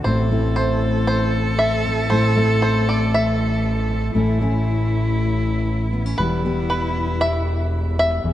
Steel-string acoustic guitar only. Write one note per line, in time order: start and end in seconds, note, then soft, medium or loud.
0.05 2.10 A2 medium
0.05 0.31 A3 soft
0.05 0.32 C4 medium
0.05 0.32 E4 medium
0.31 2.11 A3 medium
0.31 1.84 C4 medium
0.31 2.13 E4 medium
1.85 2.07 C4 medium
2.11 4.13 A2 medium
2.11 2.36 A3 medium
2.11 2.36 C4 medium
2.11 2.38 E4 medium
2.36 4.12 A3 medium
2.36 3.89 C4 medium
2.36 4.16 E4 medium
3.90 4.12 C4 medium
4.14 6.19 A2 medium
4.14 4.39 A3 medium
4.14 4.40 C#4 medium
4.14 4.42 E4 medium
4.41 6.16 A3 medium
4.41 5.93 C#4 medium
4.41 6.21 E4 medium
5.93 6.06 B3 medium
6.06 6.19 C#4 medium
6.19 8.23 E2 medium
6.19 6.44 G3 medium
6.19 6.44 B3 medium
6.19 6.45 G4 medium
6.45 8.33 G3 medium
6.45 7.98 B3 medium
6.45 8.22 G4 medium
7.99 8.33 B3 medium
8.24 8.33 E2 medium